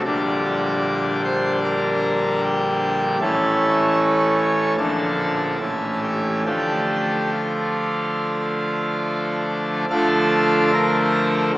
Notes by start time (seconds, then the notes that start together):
0.05 A#1 A#2 D3 G3 D4 D5
1.25 C5
1.64 A#4
2.43 G4
3.21 A1 A2 E3 A3 C#4 A4
4.39 C#5
4.78 A#1 A#2 D3 F3 D4 A4
5.61 A1 A2 E3 A3 C#4
6.03 G4
6.46 D3 F3 A3 D4 G4
7.33 F4
9.90 D3 F3 A3 D4 F4 A4
10.73 A#4